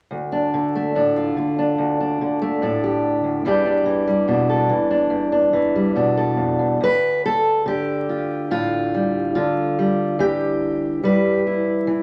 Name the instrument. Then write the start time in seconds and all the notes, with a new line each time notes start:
steel-string acoustic guitar
0.11 D2
0.32 D4
0.54 D3
0.75 A3
0.95 A2 D4
1.16 F4
1.37 D3
1.59 D4
1.78 D2
2.00 D4
2.21 D3
2.42 A3
2.62 A2 D4
2.84 G4
3.24 D2
3.45 E2 E3 G3 D4 G4
3.66 D4
3.86 E3
4.07 G3
4.28 B2 D4
4.50 A4
4.69 E3
4.91 D4
5.10 E2
5.32 D4
5.53 E3
5.76 G3
5.96 B2 D4
6.17 A4
6.37 F2
6.59 E2
6.81 D2 B4
7.26 A4
7.66 D3 G4
8.09 F4
8.51 A2 F4
8.94 G3
9.35 D3 F4
9.79 G3
10.19 E3 G4
11.03 G3 B4
11.47 E4
11.87 E3